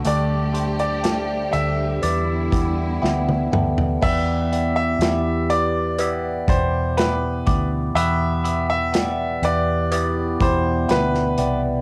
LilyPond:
<<
  \new Staff \with { instrumentName = "Grand piano" } { \time 4/4 \key e \minor \tempo 4 = 61 d''8. d''8. e''2 r8 | e''8. e''8. d''4 c''8 b'8. r16 | e''8. e''8. d''4 c''8 b'8. r16 | }
  \new Staff \with { instrumentName = "Tine electric piano" } { \time 4/4 \key e \minor <a d' g' d''>8 <a d' g' c''>8 <a d' g' d''>8 <a d' g' e''>8 <b e' g' d''>8 <b e' g' d''>8 <b e' g' e''>8 <b e' g' a'>8 | <b e' g' d''>8 <b e' g' d''>8 <b e' g' d''>8 <b e' g' d''>8 <b e' g' e''>8 <b, e' g' d''>8 <b e' g' d''>8 <b e' g' d''>8 | <b e' g' b'>8 <b e' g' e''>8 <b e' g' d''>8 <b e' g' b'>8 <b e' g' d''>8 <b, e' g' d''>8 <b e' g' b'>8 <b e' g' d''>8 | }
  \new Staff \with { instrumentName = "Tine electric piano" } { \clef bass \time 4/4 \key e \minor d4. r8 e4. r8 | e4. r2 r8 | e4. r2 r8 | }
  \new Staff \with { instrumentName = "String section" } { \time 4/4 \key e \minor << { <d a g'>2 <d b e'>2 | r1 | r1 | } \\ { g1 | r1 | r1 | } >> }
  \new Staff \with { instrumentName = "Fingered electric bass" } { \clef bass \time 4/4 \key e \minor d,4. d,8 e,8 e,8 d,8 d,8 | e,4 e,4. e,4 d,8 | e,4. e,4 e,8 d,8 c,8 | }
  \new DrumStaff \with { instrumentName = "Drums" } \drummode { \time 4/4 hh8 hh16 hh16 <hh sn>8 hh8 hh8 <hh bd>8 sn16 tommh16 toml16 tomfh16 | <cymc bd>8 hh8 <hh sn>8 hh8 hh8 <hh bd>8 <hh sn>8 <hh bd>8 | hh8 hh8 <hh sn>8 hh8 hh8 <hh bd>8 <hh sn>16 sn16 hh8 | }
>>